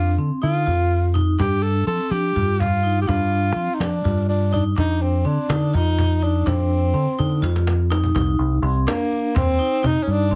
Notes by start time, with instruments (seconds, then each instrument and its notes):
Already playing: fingered electric bass F2, tenor saxophone F4
0.18 fingered electric bass D3, vibraphone C4, cajon slap
0.42 fingered electric bass D3, vibraphone D#4, tenor saxophone F4, cajon slap
0.66 fingered electric bass F2, vibraphone F4, cajon bass
0.91 cajon slap
1.14 vibraphone D#4, cajon bass
1.39 fingered electric bass G2, vibraphone D4, tenor saxophone G4, cajon bass
1.63 tenor saxophone A4, cajon slap
1.87 fingered electric bass F3, vibraphone C4, tenor saxophone A4, cajon slap
2.11 fingered electric bass F3, vibraphone D4, tenor saxophone G4, cajon slap
2.36 fingered electric bass G2, vibraphone F4, cajon bass
2.60 tenor saxophone F4, cajon bass
2.83 vibraphone D#4, cajon slap
3.01 tenor saxophone G4
3.07 fingered electric bass G2, vibraphone D4, tenor saxophone F4, cajon bass
3.33 cajon slap
3.56 fingered electric bass F3, vibraphone C4, cajon slap
3.74 tenor saxophone D#4
3.80 fingered electric bass F3, vibraphone D4, tenor saxophone D4, cajon slap
4.04 fingered electric bass G2, vibraphone F4, cajon bass
4.29 tenor saxophone D4, cajon slap
4.53 tenor saxophone D4, vibraphone D#4, cajon bass
4.77 fingered electric bass F2, vibraphone D4, tenor saxophone D#4, cajon bass
5.02 tenor saxophone C4, cajon slap
5.25 fingered electric bass D3, vibraphone C4, tenor saxophone D4, cajon slap
5.49 fingered electric bass D3, vibraphone D#4, cajon slap
5.73 fingered electric bass F2, tenor saxophone D#4, vibraphone F4, cajon bass
5.99 cajon bass
6.22 tenor saxophone D4, vibraphone D#4, cajon slap
6.46 fingered electric bass F2, tenor saxophone C4, vibraphone D4, cajon bass
6.71 cajon slap
6.94 fingered electric bass D3, vibraphone C4, cajon slap
7.19 fingered electric bass D3, vibraphone D#4, cajon bass, cajon slap
7.42 fingered electric bass F2, vibraphone F4, cajon slap
7.56 cajon slap
7.67 cajon slap
7.91 vibraphone D#4, cajon slap
8.04 cajon bass
8.15 fingered electric bass C2, vibraphone D#4, cajon bass
8.39 fingered electric bass C2, cajon slap
8.62 fingered electric bass C2, vibraphone C4, cajon slap
8.87 tenor saxophone A#3, vibraphone D4, cajon slap
9.12 cajon slap
9.35 fingered electric bass D#2, vibraphone C4, tenor saxophone C4, cajon bass
9.59 vibraphone D#4, cajon slap
9.83 fingered electric bass C3, vibraphone D#4, tenor saxophone D#4, cajon bass
10.03 tenor saxophone C#4
10.07 fingered electric bass G2, cajon slap
10.11 tenor saxophone D4
10.31 fingered electric bass A#1, vibraphone C4